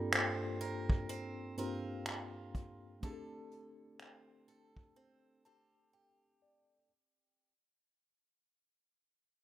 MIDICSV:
0, 0, Header, 1, 4, 480
1, 0, Start_track
1, 0, Tempo, 967742
1, 1502, Time_signature, 4, 2, 24, 8
1, 4680, End_track
2, 0, Start_track
2, 0, Title_t, "Steel-string acoustic guitar"
2, 0, Program_c, 0, 25
2, 0, Note_on_c, 0, 55, 74
2, 0, Note_on_c, 0, 60, 58
2, 0, Note_on_c, 0, 70, 63
2, 60, Note_off_c, 0, 60, 0
2, 62, Note_on_c, 0, 60, 59
2, 296, Note_off_c, 0, 70, 0
2, 302, Note_on_c, 0, 70, 66
2, 540, Note_off_c, 0, 60, 0
2, 542, Note_on_c, 0, 60, 67
2, 781, Note_off_c, 0, 60, 0
2, 782, Note_off_c, 0, 70, 0
2, 783, Note_on_c, 0, 60, 58
2, 786, Note_on_c, 0, 65, 61
2, 788, Note_on_c, 0, 70, 62
2, 1016, Note_off_c, 0, 65, 0
2, 1022, Note_on_c, 0, 65, 61
2, 1502, Note_on_c, 0, 50, 74
2, 1503, Note_off_c, 0, 55, 0
2, 1503, Note_off_c, 0, 70, 0
2, 1505, Note_on_c, 0, 69, 62
2, 1558, Note_off_c, 0, 65, 0
2, 1981, Note_off_c, 0, 60, 0
2, 1983, Note_on_c, 0, 60, 58
2, 2221, Note_off_c, 0, 69, 0
2, 2223, Note_on_c, 0, 69, 61
2, 2460, Note_off_c, 0, 60, 0
2, 2462, Note_on_c, 0, 60, 67
2, 2702, Note_off_c, 0, 60, 0
2, 2704, Note_on_c, 0, 60, 53
2, 2707, Note_on_c, 0, 67, 57
2, 2708, Note_off_c, 0, 69, 0
2, 2710, Note_on_c, 0, 69, 60
2, 2941, Note_off_c, 0, 67, 0
2, 2943, Note_on_c, 0, 67, 58
2, 3422, Note_off_c, 0, 50, 0
2, 3726, Note_off_c, 0, 67, 0
2, 3730, Note_off_c, 0, 60, 0
2, 3730, Note_off_c, 0, 69, 0
2, 4680, End_track
3, 0, Start_track
3, 0, Title_t, "Tine electric piano"
3, 0, Program_c, 1, 4
3, 0, Control_c, 1, 64, 127
3, 0, Note_on_c, 1, 43, 78
3, 0, Note_on_c, 1, 58, 72
3, 0, Note_on_c, 1, 60, 70
3, 0, Note_on_c, 1, 62, 69
3, 0, Note_on_c, 1, 65, 70
3, 0, Note_on_c, 1, 69, 79
3, 758, Note_off_c, 1, 43, 0
3, 760, Note_off_c, 1, 58, 0
3, 763, Note_off_c, 1, 60, 0
3, 765, Note_off_c, 1, 62, 0
3, 768, Note_off_c, 1, 65, 0
3, 779, Note_on_c, 1, 43, 54
3, 781, Note_on_c, 1, 58, 49
3, 784, Note_on_c, 1, 60, 52
3, 786, Note_on_c, 1, 62, 50
3, 787, Note_off_c, 1, 69, 0
3, 789, Note_on_c, 1, 65, 48
3, 792, Note_on_c, 1, 67, 60
3, 1492, Note_on_c, 1, 57, 75
3, 1493, Note_off_c, 1, 60, 0
3, 1499, Note_off_c, 1, 62, 0
3, 1499, Note_on_c, 1, 60, 69
3, 1501, Note_off_c, 1, 43, 0
3, 1502, Note_off_c, 1, 58, 0
3, 1505, Note_on_c, 1, 62, 67
3, 1506, Note_off_c, 1, 65, 0
3, 1506, Note_off_c, 1, 67, 0
3, 1510, Control_c, 1, 64, 0
3, 1512, Note_on_c, 1, 67, 68
3, 1519, Note_on_c, 1, 68, 66
3, 1548, Note_off_c, 1, 68, 0
3, 1551, Note_on_c, 1, 69, 80
3, 1585, Control_c, 1, 64, 127
3, 2704, Note_on_c, 1, 81, 66
3, 2927, Note_off_c, 1, 81, 0
3, 2944, Note_on_c, 1, 79, 67
3, 3167, Note_off_c, 1, 79, 0
3, 3185, Note_on_c, 1, 74, 72
3, 3397, Note_off_c, 1, 57, 0
3, 3401, Note_off_c, 1, 60, 0
3, 3404, Note_off_c, 1, 62, 0
3, 3407, Note_off_c, 1, 67, 0
3, 3407, Note_off_c, 1, 74, 0
3, 3427, Note_off_c, 1, 69, 0
3, 3429, Control_c, 1, 64, 0
3, 4680, End_track
4, 0, Start_track
4, 0, Title_t, "Drums"
4, 63, Note_on_c, 9, 26, 110
4, 65, Note_on_c, 9, 42, 63
4, 112, Note_off_c, 9, 26, 0
4, 115, Note_off_c, 9, 42, 0
4, 303, Note_on_c, 9, 42, 58
4, 353, Note_off_c, 9, 42, 0
4, 444, Note_on_c, 9, 36, 85
4, 494, Note_off_c, 9, 36, 0
4, 546, Note_on_c, 9, 42, 61
4, 595, Note_off_c, 9, 42, 0
4, 784, Note_on_c, 9, 42, 58
4, 834, Note_off_c, 9, 42, 0
4, 1021, Note_on_c, 9, 26, 110
4, 1023, Note_on_c, 9, 42, 66
4, 1071, Note_off_c, 9, 26, 0
4, 1072, Note_off_c, 9, 42, 0
4, 1263, Note_on_c, 9, 36, 91
4, 1264, Note_on_c, 9, 42, 76
4, 1313, Note_off_c, 9, 36, 0
4, 1313, Note_off_c, 9, 42, 0
4, 1503, Note_on_c, 9, 36, 106
4, 1503, Note_on_c, 9, 42, 73
4, 1552, Note_off_c, 9, 36, 0
4, 1553, Note_off_c, 9, 42, 0
4, 1743, Note_on_c, 9, 42, 62
4, 1792, Note_off_c, 9, 42, 0
4, 1982, Note_on_c, 9, 26, 109
4, 1984, Note_on_c, 9, 42, 62
4, 2031, Note_off_c, 9, 26, 0
4, 2034, Note_off_c, 9, 42, 0
4, 2223, Note_on_c, 9, 42, 57
4, 2273, Note_off_c, 9, 42, 0
4, 2363, Note_on_c, 9, 36, 82
4, 2413, Note_off_c, 9, 36, 0
4, 4680, End_track
0, 0, End_of_file